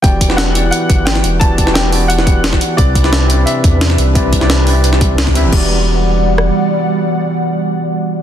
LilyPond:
<<
  \new Staff \with { instrumentName = "Grand piano" } { \time 4/4 \key e \minor \tempo 4 = 175 g''4 fis''4 fis''4 g''4 | a''4 g''4 fis''2 | d''2 e''2 | r1 |
r1 | r1 | }
  \new Staff \with { instrumentName = "Analog synth pad" } { \time 4/4 \key e \minor r1 | r1 | <e d' b'>1~ | <e d' b'>1 |
<g d'' fis''>1~ | <g d'' fis''>1 | }
  \new Staff \with { instrumentName = "Tine electric piano" } { \time 4/4 \key e \minor <e b fis' g' d''>8. <e b fis' g' b'>8. <e b e' g' d''>2~ <e b e' g' d''>8 | <e b fis' g' d''>8. <e b fis' g' b'>8. <e b fis' g' d''>2~ <e b fis' g' d''>8 | <c c' e' b' d''>8. <c c' e' b' d''>8. <c c' e' b' d''>2~ <c c' e' b' d''>8 | <c c' e' b' d''>8. <c c' e' b' d''>8. <c c' e' b' d''>2 <c c' e' b' e''>8 |
<e b fis' g' d''>1~ | <e b fis' g' d''>1 | }
  \new Staff \with { instrumentName = "Sub bass" } { \clef bass \time 4/4 \key e \minor e,,2 r8 g,,4 e,,8~ | e,,8. e,,2~ e,,8. r8 | c,2 r8 e,4 c,8~ | c,8. c,2~ c,8. d,16 g,,16 |
e,,2. r4 | r1 | }
  \new DrumStaff \with { instrumentName = "Drums" } \drummode { \time 4/4 <hh bd>8 <hh bd>16 sn16 <hh sn>8 hh8 hh8 <hh bd>8 <hh sn>16 sn16 hh8 | <hh bd>8 <hh bd>16 sn16 <hh sn>8 hho8 hh16 sn16 <hh bd>8 <hh sn>16 <bd sn>16 hh8 | <hh bd>8 <hh bd>16 sn16 <hh sn>8 hh8 hh8 <hh bd>8 <hh sn>16 sn16 hh8 | <hh bd>8 <hh bd>16 sn16 <hh sn>8 hho8 hh16 sn16 <hh bd>8 <hh sn>16 <bd sn>16 hh8 |
<cymc bd>4 r4 r8 ss8 r4 | r4 r4 r4 r4 | }
>>